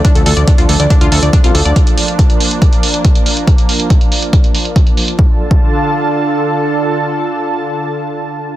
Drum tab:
HH |xxoxxxoxxxoxxxox|xxoxxxoxxxoxxxox|xxoxxxoxxxoxxxox|----------------|
BD |o---o---o---o---|o---o---o---o---|o---o---o---o---|o--o------------|

HH |----------------|
BD |----------------|